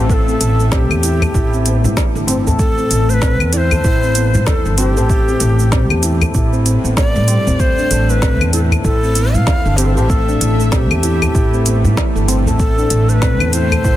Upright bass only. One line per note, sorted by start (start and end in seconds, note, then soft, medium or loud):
0.00 0.34 A1 medium
0.41 0.91 A1 medium
0.91 1.28 E2 medium
1.34 1.86 A1 loud
1.84 1.93 A2 medium
2.15 2.47 G1 medium
2.47 2.84 A1 medium
2.91 3.41 A1 medium
3.41 3.78 E2 medium
3.85 4.36 A1 medium
4.34 4.43 A2 medium
4.66 4.97 G1 loud
4.97 5.34 A1 medium
5.41 5.91 A1 medium
5.91 6.28 E2 medium
6.35 6.74 A1 loud
6.84 7.17 A1 medium
7.16 7.34 A2 loud
7.47 7.55 A1 medium
7.91 8.41 A1 medium
8.41 8.77 E2 medium
8.84 9.36 A1 medium
9.35 9.43 A2 medium
9.65 9.97 G1 medium
9.97 10.34 A1 medium
10.41 10.91 A1 medium
10.91 11.28 E2 medium
11.35 11.86 A1 loud
11.84 11.93 A2 medium
12.15 12.47 G1 medium
12.47 12.84 A1 medium
12.91 13.40 A1 medium
13.40 13.77 E2 medium
13.85 13.96 A1 medium